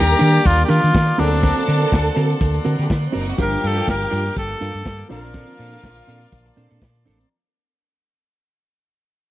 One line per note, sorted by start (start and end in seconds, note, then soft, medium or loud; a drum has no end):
0.00 0.13 D#2 loud
0.00 1.17 G3 medium
0.00 1.15 A#3 medium
0.00 7.27 A#3 medium
0.00 1.15 D4 medium
0.00 1.16 D#4 medium
0.00 0.48 G4 loud
0.00 0.91 A#4 loud
0.00 1.16 A#4 medium
0.00 1.17 D5 medium
0.00 1.17 G5 medium
0.00 0.91 A#5 loud
0.00 1.17 D6 medium
0.09 muted clean electric guitar stroke medium
0.09 closed hi-hat soft
0.19 0.37 D#3 loud
0.19 0.40 D4 medium
0.19 0.33 G4 medium
0.19 0.33 A#4 loud
0.19 closed hi-hat medium
0.34 muted clean electric guitar stroke soft
0.34 closed hi-hat medium
0.44 0.62 D#2 loud
0.44 0.64 F4 loud
0.44 muted clean electric guitar stroke soft
0.44 kick loud
0.44 closed hi-hat medium
0.58 muted clean electric guitar stroke soft
0.58 closed hi-hat soft
0.65 0.89 D4 medium
0.65 0.71 G4 medium
0.65 0.82 G4 medium
0.69 0.79 D#3 medium
0.69 1.21 F4 loud
0.69 0.81 A#4 medium
0.69 closed hi-hat medium
0.82 0.91 D#3 medium
0.82 muted clean electric guitar stroke medium
0.82 closed hi-hat medium
0.93 muted clean electric guitar stroke soft
0.93 kick loud
0.93 snare loud
1.07 muted clean electric guitar stroke medium
1.07 closed hi-hat soft
1.17 1.51 D2 loud
1.17 3.10 F#3 medium
1.17 3.10 A#3 medium
1.17 1.38 C4 medium
1.17 3.11 C4 medium
1.17 2.17 D4 medium
1.17 3.11 D4 medium
1.17 1.31 F#4 loud
1.17 1.26 G#4 medium
1.17 2.74 A4 loud
1.17 1.31 A#4 loud
1.17 3.37 D5 medium
1.17 3.37 F#5 medium
1.17 2.74 A5 loud
1.17 3.37 C6 medium
1.17 open hi-hat medium
1.27 3.14 A4 medium
1.32 muted clean electric guitar stroke soft
1.32 closed hi-hat medium
1.43 1.63 C4 medium
1.43 1.55 F#4 medium
1.43 1.55 A#4 loud
1.43 kick loud
1.43 closed hi-hat medium
1.56 muted clean electric guitar stroke soft
1.56 closed hi-hat medium
1.67 1.84 D3 loud
1.67 1.81 C4 medium
1.67 1.80 F#4 medium
1.67 1.79 A#4 medium
1.67 snare soft
1.67 closed hi-hat medium
1.80 1.97 C4 soft
1.80 1.96 F#4 medium
1.80 1.96 A#4 medium
1.80 closed hi-hat medium
1.92 2.08 D2 loud
1.92 kick loud
1.92 snare loud
2.05 muted clean electric guitar stroke soft
2.05 closed hi-hat soft
2.16 2.33 D3 loud
2.16 2.36 C4 medium
2.16 2.29 F#4 medium
2.16 2.29 A#4 medium
2.16 closed hi-hat medium
2.30 muted clean electric guitar stroke soft
2.30 closed hi-hat medium
2.41 2.57 D2 loud
2.41 muted clean electric guitar stroke soft
2.41 kick loud
2.41 closed hi-hat medium
2.54 muted clean electric guitar stroke medium
2.54 closed hi-hat medium
2.65 2.75 D3 loud
2.65 2.78 C4 medium
2.65 2.78 F#4 medium
2.65 2.77 A#4 medium
2.65 closed hi-hat medium
2.78 2.86 D3 medium
2.78 2.90 G3 medium
2.78 2.88 C4 soft
2.78 2.88 F#4 medium
2.78 2.90 G4 medium
2.78 2.88 A#4 medium
2.78 closed hi-hat soft
2.89 3.06 D3 medium
2.89 2.97 A3 medium
2.89 2.97 A4 medium
2.89 muted clean electric guitar stroke soft
2.89 kick loud
2.89 snare loud
2.98 3.06 A#3 medium
2.98 3.06 A#4 medium
3.02 3.14 C4 medium
3.02 3.14 C5 medium
3.02 muted clean electric guitar stroke soft
3.02 closed hi-hat soft
3.12 3.31 F#1 loud
3.12 3.33 C4 loud
3.12 3.22 D4 medium
3.12 3.27 F#4 loud
3.12 3.26 A#4 loud
3.12 3.22 D5 medium
3.12 open hi-hat medium
3.22 3.30 D#4 medium
3.22 3.30 D#5 medium
3.28 3.39 F#4 medium
3.28 3.39 F#5 medium
3.28 muted clean electric guitar stroke soft
3.28 closed hi-hat soft
3.38 3.55 G1 loud
3.38 5.06 F3 medium
3.38 5.06 G3 medium
3.38 5.07 A#3 medium
3.38 3.58 D4 medium
3.38 5.07 D4 medium
3.38 3.52 F4 medium
3.38 4.83 G4 loud
3.38 5.08 G4 medium
3.38 3.51 A#4 loud
3.38 5.08 F5 medium
3.38 5.08 G5 medium
3.38 4.83 G5 loud
3.38 5.08 D6 medium
3.38 kick loud
3.38 closed hi-hat medium
3.42 3.68 A#4 loud
3.52 muted clean electric guitar stroke soft
3.52 closed hi-hat soft
3.63 3.80 G2 loud
3.63 3.76 D4 medium
3.63 3.77 F4 medium
3.63 3.89 A4 loud
3.63 3.75 A#4 medium
3.63 closed hi-hat medium
3.77 3.92 D4 medium
3.77 3.92 F4 medium
3.77 3.92 A#4 medium
3.77 closed hi-hat medium
3.88 4.04 G1 loud
3.88 4.34 A#4 loud
3.88 kick loud
3.88 snare loud
4.01 muted clean electric guitar stroke soft
4.01 closed hi-hat soft
4.11 4.29 G2 loud
4.11 4.32 D4 medium
4.11 4.25 F4 loud
4.11 4.24 A#4 loud
4.11 closed hi-hat medium
4.26 closed hi-hat soft
4.36 4.53 G1 loud
4.36 5.07 A4 loud
4.36 muted clean electric guitar stroke soft
4.36 kick loud
4.36 closed hi-hat medium
4.50 muted clean electric guitar stroke soft
4.50 closed hi-hat soft
4.61 4.70 G2 loud
4.61 4.81 D4 medium
4.61 4.74 F4 loud
4.61 4.73 A#4 medium
4.61 closed hi-hat medium
4.74 4.82 G2 medium
4.74 muted clean electric guitar stroke soft
4.74 closed hi-hat soft
4.86 5.02 G2 medium
4.86 kick loud
4.86 snare loud
4.98 muted clean electric guitar stroke soft
4.98 closed hi-hat soft
5.08 5.43 A#1 medium
5.08 7.01 F3 medium
5.08 7.02 A#3 medium
5.08 5.30 C4 medium
5.08 7.02 C4 medium
5.08 5.24 D4 medium
5.08 7.02 D4 medium
5.08 7.02 F4 loud
5.08 5.23 A4 loud
5.08 7.03 A#4 medium
5.08 6.79 A#4 loud
5.08 7.29 D5 medium
5.08 7.03 F5 loud
5.08 7.29 A5 medium
5.08 7.29 C6 medium
5.08 open hi-hat medium
5.24 muted clean electric guitar stroke soft
5.24 closed hi-hat medium
5.34 5.54 C4 loud
5.34 5.48 D4 medium
5.34 5.47 A4 medium
5.34 kick loud
5.34 closed hi-hat medium
5.48 muted clean electric guitar stroke soft
5.48 closed hi-hat soft
5.59 5.75 A#2 medium
5.59 5.73 C4 medium
5.59 5.72 D4 medium
5.59 5.72 A4 medium
5.59 closed hi-hat medium
5.73 5.88 C4 medium
5.73 5.88 D4 medium
5.73 5.88 A4 medium
5.73 closed hi-hat medium
5.84 6.00 A#1 loud
5.84 kick loud
5.84 snare loud
5.97 muted clean electric guitar stroke medium
5.97 closed hi-hat soft
6.07 6.24 A#2 loud
6.07 6.28 C4 medium
6.07 6.22 D4 loud
6.07 6.21 A4 loud
6.07 closed hi-hat medium
6.21 muted clean electric guitar stroke soft
6.21 closed hi-hat soft
6.32 6.49 A#1 loud
6.32 muted clean electric guitar stroke soft
6.32 kick loud
6.32 closed hi-hat medium
6.46 muted clean electric guitar stroke medium
6.46 closed hi-hat medium
6.57 6.66 A#2 loud
6.57 6.70 C4 medium
6.57 6.69 D4 medium
6.57 6.69 A4 medium
6.57 closed hi-hat medium
6.70 6.78 A#2 medium
6.70 6.80 C4 medium
6.70 6.81 D4 medium
6.70 6.81 A4 medium
6.70 closed hi-hat soft
6.81 7.08 A#2 medium
6.81 muted clean electric guitar stroke soft
6.81 kick loud
6.81 snare loud
6.95 muted clean electric guitar stroke soft
6.95 closed hi-hat soft
7.06 7.23 A1 medium
7.06 7.26 C4 medium
7.06 7.20 D4 loud
7.06 7.19 A4 loud
7.06 open hi-hat medium
7.20 muted clean electric guitar stroke soft
7.20 closed hi-hat soft